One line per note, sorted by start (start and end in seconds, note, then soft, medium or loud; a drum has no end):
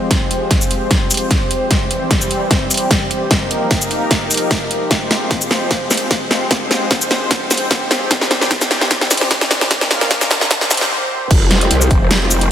0.00 1.68 F3 medium
0.00 1.68 G#3 medium
0.00 1.68 C4 medium
0.00 8.07 G4 medium
0.00 3.27 C5 medium
0.11 kick medium
0.11 snare medium
0.11 closed hi-hat medium
0.31 closed hi-hat medium
0.51 kick loud
0.51 snare medium
0.51 closed hi-hat medium
0.61 shaker soft
0.71 closed hi-hat medium
0.91 kick medium
0.91 snare medium
0.91 closed hi-hat medium
1.11 closed hi-hat soft
1.11 shaker medium
1.14 closed hi-hat medium
1.17 closed hi-hat medium
1.31 kick loud
1.31 snare medium
1.31 closed hi-hat medium
1.51 closed hi-hat medium
1.71 3.29 E3 medium
1.71 3.29 G3 medium
1.71 3.29 C4 medium
1.71 kick medium
1.71 snare medium
1.71 closed hi-hat medium
1.91 closed hi-hat medium
2.11 kick loud
2.11 snare medium
2.11 closed hi-hat medium
2.21 shaker soft
2.31 closed hi-hat medium
2.51 kick medium
2.51 snare medium
2.51 closed hi-hat medium
2.71 closed hi-hat medium
2.71 shaker medium
2.74 closed hi-hat medium
2.77 closed hi-hat medium
2.91 kick medium
2.91 snare medium
2.91 closed hi-hat medium
3.11 closed hi-hat medium
3.31 8.07 F3 medium
3.31 4.89 A#3 medium
3.31 4.89 D#4 medium
3.31 4.89 A#4 medium
3.31 kick loud
3.31 snare medium
3.31 closed hi-hat medium
3.51 closed hi-hat soft
3.71 kick loud
3.71 snare medium
3.71 closed hi-hat medium
3.81 shaker medium
3.91 closed hi-hat medium
4.11 kick medium
4.11 snare medium
4.11 closed hi-hat medium
4.31 closed hi-hat soft
4.31 shaker medium
4.34 closed hi-hat medium
4.37 closed hi-hat medium
4.51 kick loud
4.51 snare medium
4.51 closed hi-hat medium
4.71 closed hi-hat medium
4.91 8.08 G#3 medium
4.91 9.67 C4 medium
4.91 9.67 C5 medium
4.91 kick loud
4.91 snare medium
4.91 closed hi-hat medium
5.11 snare medium
5.11 closed hi-hat soft
5.31 kick loud
5.31 snare medium
5.31 closed hi-hat medium
5.41 shaker medium
5.51 snare medium
5.51 closed hi-hat medium
5.71 kick loud
5.71 snare medium
5.71 closed hi-hat medium
5.91 snare medium
5.91 closed hi-hat soft
5.91 shaker medium
5.94 closed hi-hat medium
5.97 closed hi-hat medium
6.11 kick medium
6.11 snare medium
6.11 closed hi-hat medium
6.31 snare medium
6.31 closed hi-hat medium
6.51 kick medium
6.51 snare medium
6.51 closed hi-hat medium
6.71 snare medium
6.71 closed hi-hat medium
6.91 kick loud
6.91 snare medium
6.91 closed hi-hat medium
7.01 shaker medium
7.11 snare medium
7.11 closed hi-hat medium
7.31 kick medium
7.31 snare medium
7.31 closed hi-hat medium
7.51 snare medium
7.51 closed hi-hat soft
7.51 shaker medium
7.54 closed hi-hat medium
7.57 closed hi-hat medium
7.71 kick loud
7.71 snare medium
7.71 closed hi-hat medium
7.91 snare medium
7.91 closed hi-hat medium
8.11 9.69 E3 medium
8.11 10.88 G3 medium
8.11 9.69 G4 medium
8.11 kick loud
8.11 snare medium
8.11 closed hi-hat medium
8.21 snare medium
8.31 snare medium
8.31 closed hi-hat medium
8.41 snare medium
8.51 kick loud
8.51 snare medium
8.51 closed hi-hat medium
8.61 snare medium
8.61 shaker medium
8.71 snare loud
8.71 closed hi-hat medium
8.81 snare medium
8.91 kick loud
8.91 snare medium
8.91 closed hi-hat medium
9.01 snare medium
9.11 snare loud
9.11 closed hi-hat medium
9.11 shaker medium
9.14 closed hi-hat medium
9.17 snare medium
9.17 closed hi-hat medium
9.31 kick medium
9.31 snare loud
9.31 closed hi-hat medium
9.41 snare medium
9.51 snare loud
9.51 closed hi-hat medium
9.61 snare medium
9.71 10.90 D#3 medium
9.71 10.50 A#3 medium
9.71 10.50 F4 medium
9.71 10.50 A#4 medium
9.71 kick loud
9.71 snare loud
9.71 closed hi-hat medium
9.81 snare medium
9.91 snare loud
9.91 closed hi-hat medium
10.01 snare medium
10.11 kick loud
10.11 snare loud
10.11 closed hi-hat medium
10.21 snare medium
10.21 shaker medium
10.31 snare loud
10.31 closed hi-hat medium
10.41 snare medium
10.51 10.90 C4 medium
10.51 10.90 G4 medium
10.51 10.90 C5 medium
10.51 kick loud
10.51 snare loud
10.51 closed hi-hat medium
10.61 snare medium
10.71 snare loud
10.71 closed hi-hat medium
10.71 shaker medium
10.74 closed hi-hat medium
10.77 snare loud
10.77 closed hi-hat medium
11.31 11.69 F1 medium
11.31 12.52 F3 medium
11.31 12.52 G#3 medium
11.31 12.52 C4 medium
11.31 12.52 G4 medium
11.31 12.52 C5 medium
11.31 kick loud
11.31 closed hi-hat medium
11.31 crash loud
11.51 snare medium
11.51 closed hi-hat medium
11.61 closed hi-hat medium
11.71 11.89 C2 loud
11.71 closed hi-hat medium
11.81 shaker medium
11.91 12.49 F1 loud
11.91 kick loud
11.91 closed hi-hat medium
12.11 snare loud
12.11 closed hi-hat medium
12.31 shaker medium
12.41 closed hi-hat medium